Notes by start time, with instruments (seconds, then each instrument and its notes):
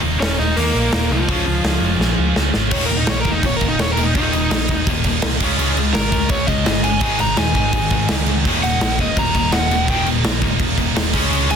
Already playing: distorted electric guitar D#2 A#2 D#3 G3 A#3 D#4
0.04 picked electric bass D#1
0.20 picked electric bass D#1, overdriven electric guitar C#4 C#5, snare, open hi-hat
0.39 picked electric bass D#1, overdriven electric guitar D#4 D#5
0.56 picked electric bass D#2, overdriven electric guitar A#3 A#4, open hi-hat
0.75 picked electric bass A#1
0.92 picked electric bass D#1, overdriven electric guitar A#3 A#4, snare, open hi-hat
1.10 picked electric bass C2, overdriven electric guitar F3 F4
1.28 picked electric bass C#2, distorted electric guitar C#3 G#3 C#4 F4, kick, open hi-hat
1.33 distorted electric guitar G#4
1.46 picked electric bass C#2
1.64 picked electric bass C#2, snare, open hi-hat
1.81 picked electric bass F1
1.99 picked electric bass A#1, snare
2.18 picked electric bass C#2
2.36 picked electric bass C#2, snare
2.54 picked electric bass G#1, snare
2.71 picked electric bass D#1, distorted electric guitar D#2 A#2 D#3 G3 A#3, overdriven electric guitar C#5, kick, crash
2.75 distorted electric guitar D#4
2.85 overdriven electric guitar A#4, crash
2.90 picked electric bass D#1, distorted electric guitar D#2 A#2
2.97 overdriven electric guitar D#4
3.07 picked electric bass A#1, distorted electric guitar D#2 A#2, overdriven electric guitar C#5, snare, crash
3.21 picked electric bass D#1, overdriven electric guitar A#4, crash
3.25 distorted electric guitar D#2 A#2, kick
3.32 overdriven electric guitar D#4
3.43 picked electric bass D#1, distorted electric guitar D#2 A#2, overdriven electric guitar C#5, kick, crash
3.56 overdriven electric guitar A#4
3.61 picked electric bass D#1, distorted electric guitar D#2 A#2, kick, crash
3.68 overdriven electric guitar D#4
3.79 picked electric bass D#1, distorted electric guitar D#2 A#2, overdriven electric guitar C#5, snare, crash
3.93 overdriven electric guitar A#4
3.97 distorted electric guitar D#2 A#2, crash
4.04 overdriven electric guitar D#4
4.15 picked electric bass D#1, distorted electric guitar D#2 A#2 D#3 G3, overdriven electric guitar D#4, kick, crash
4.20 distorted electric guitar A#3 D#4
4.33 picked electric bass D#1, distorted electric guitar D#2 A#2, crash
4.51 picked electric bass A#1, distorted electric guitar D#2 A#2, snare, crash
4.68 picked electric bass D#1, distorted electric guitar D#2 A#2, kick, crash
4.87 picked electric bass D#1, distorted electric guitar D#2 A#2, kick, crash
5.04 picked electric bass D#1, distorted electric guitar D#2 A#2, kick, crash
5.22 picked electric bass C2, distorted electric guitar D#2 A#2, snare, crash
5.40 picked electric bass C#2, distorted electric guitar C#3 G#3 C#4, kick, crash
5.45 distorted electric guitar F4 G#4
5.58 picked electric bass C#2, distorted electric guitar C#3 G#3 C#4, crash
5.77 picked electric bass C#2, distorted electric guitar C#3 G#3, crash
5.94 picked electric bass G#1, distorted electric guitar C#3 G#3, overdriven electric guitar A#4, snare, crash
6.12 picked electric bass C#2, distorted electric guitar C#3 G#3, kick, crash
6.29 picked electric bass C#2, distorted electric guitar C#3 G#3, overdriven electric guitar C#5, kick, crash
6.47 picked electric bass C#2, distorted electric guitar C#3 G#3, overdriven electric guitar D#5, kick, crash
6.65 picked electric bass G1, distorted electric guitar C#3 G#3, snare, crash
6.84 distorted electric guitar C#3 G#3, overdriven electric guitar G#5, crash
7.01 picked electric bass G#1, distorted electric guitar G#2 D#3 G#3, kick, crash
7.05 distorted electric guitar C4 D#4
7.19 picked electric bass G#1, distorted electric guitar G#2 D#3, overdriven electric guitar A#5, crash
7.37 picked electric bass D#1, distorted electric guitar G#2 D#3, overdriven electric guitar G#5, snare, crash
7.55 picked electric bass G#1, distorted electric guitar G#2 D#3, kick, crash
7.73 picked electric bass G#1, distorted electric guitar G#2 D#3, kick, crash
7.90 picked electric bass G#1, distorted electric guitar G#2 D#3, kick, crash
8.08 picked electric bass C#2, distorted electric guitar G#2 D#3, snare, crash
8.26 distorted electric guitar G#2 D#3, crash
8.45 picked electric bass D#1, distorted electric guitar D#2 A#2 D#3 G3, kick, crash
8.49 distorted electric guitar A#3 D#4
8.63 picked electric bass D#1, distorted electric guitar D#2 A#2, overdriven electric guitar F#5, crash
8.80 picked electric bass A#1, distorted electric guitar D#2 A#2, snare, crash
8.99 picked electric bass D#1, distorted electric guitar D#2 A#2, overdriven electric guitar D#5, kick, crash
9.17 picked electric bass D#1, distorted electric guitar D#2 A#2, overdriven electric guitar A#5, kick, crash
9.34 picked electric bass D#1, distorted electric guitar D#2 A#2, kick, crash
9.52 picked electric bass D#1, distorted electric guitar D#2 A#2, overdriven electric guitar F#5, snare, crash
9.71 distorted electric guitar D#2 A#2, crash
9.88 picked electric bass D#1, distorted electric guitar D#2 A#2 D#3 G3 A#3, overdriven electric guitar G5, kick, crash
9.92 distorted electric guitar D#4
10.06 picked electric bass D#1, distorted electric guitar D#2 A#2, crash
10.23 picked electric bass A#1, distorted electric guitar D#2 A#2, snare, crash
10.41 picked electric bass D#1, distorted electric guitar D#2 A#2, kick, crash
10.60 picked electric bass D#1, distorted electric guitar D#2 A#2, kick, crash
10.77 picked electric bass D#1, distorted electric guitar D#2 A#2, kick, crash
10.95 picked electric bass D#1, distorted electric guitar D#2 A#2, snare, crash
11.13 picked electric bass C#2, distorted electric guitar C#3 G#3 C#4 F4 G#4, kick, crash
11.30 picked electric bass C#2, distorted electric guitar C#3 G#3 C#4, crash
11.49 picked electric bass C#2, distorted electric guitar C#3 G#3, overdriven electric guitar G#5, crash